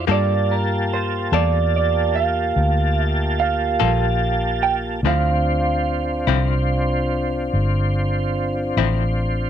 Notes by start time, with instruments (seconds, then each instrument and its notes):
0.07 fingered electric bass G2, clean electric guitar G3 A#3 F4 A4, tonewheel organ A#3 F4 G4 A5
0.11 clean electric guitar D5
0.51 clean electric guitar A#4
0.94 clean electric guitar C5
1.32 fingered electric bass E2, clean electric guitar G3 A#3 F4 A4 D5
1.76 clean electric guitar D5
2.15 clean electric guitar F5
2.56 fingered electric bass D2
2.99 clean electric guitar E5
3.40 clean electric guitar F5
3.80 fingered electric bass A#1, clean electric guitar G3 A#3 F4 A4
4.63 clean electric guitar G5
5.03 fingered electric bass D2, clean electric guitar D3 F3 C4 E4, tonewheel organ C4 D4 F4 C5
5.07 clean electric guitar F5
6.27 fingered electric bass C2, clean electric guitar D3 F3 C4 E4
7.53 fingered electric bass G1
8.77 fingered electric bass A1, clean electric guitar D3 F3 C4 E4